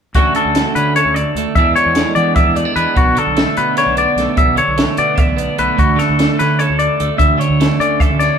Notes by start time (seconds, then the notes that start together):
0.15 D2 D3 A3 C#4 F#4, kick, closed hi-hat
0.19 F#4
0.35 D3 A4, closed hi-hat
0.45 D2
0.55 A3, snare, closed hi-hat
0.75 D3 C#4 B4, closed hi-hat
0.96 A4 C#5, closed hi-hat
1.05 D2
1.14 D5, closed hi-hat
1.35 D2 A3, closed hi-hat
1.55 E2 E3 G#3 B3 D4 E5, kick, closed hi-hat
1.76 E3 C#5, closed hi-hat
1.85 E2
1.95 G#3, snare, closed hi-hat
2.15 E3 B3 D5, closed hi-hat
2.36 D4 E5, kick, closed hi-hat
2.46 E2
2.56 A3 D5, closed hi-hat
2.65 B3
2.76 E2 G#3 B4, closed hi-hat
2.95 B1 B2 F#4, kick, closed hi-hat
3.15 D3 A4, closed hi-hat
3.27 B1
3.37 A3, snare, closed hi-hat
3.57 B2 B3 B4, closed hi-hat
3.77 D4 C#5, snare, closed hi-hat
3.86 B1
3.97 B3 D5, closed hi-hat
4.16 B1 A3, snare, closed hi-hat
4.37 B1 B2 E5, kick, closed hi-hat
4.56 D3 C#5, closed hi-hat
4.68 B1
4.78 A3, snare, closed hi-hat
4.97 B2 B3 D5, closed hi-hat
5.16 D4 E5, kick, closed hi-hat
5.28 B1
5.37 B3 D5, closed hi-hat
5.58 B1 A3 B4, closed hi-hat
5.77 D2 F#4, kick, closed hi-hat
5.96 D3 A4, closed hi-hat
6.00 snare
6.09 D2
6.19 A3, snare, closed hi-hat
6.39 D3 C#4 B4, snare, closed hi-hat
6.59 A4 C#5, closed hi-hat
6.70 D2
6.79 D5, closed hi-hat
7.00 D2 A3, closed hi-hat
7.18 D2 E5, kick, closed hi-hat
7.38 D3 C#5, closed hi-hat
7.50 D2
7.60 A3, snare, closed hi-hat
7.80 D3 C#4 D5, closed hi-hat
8.00 A4 E5, kick, closed hi-hat
8.11 D2
8.19 C#4 D5, snare, closed hi-hat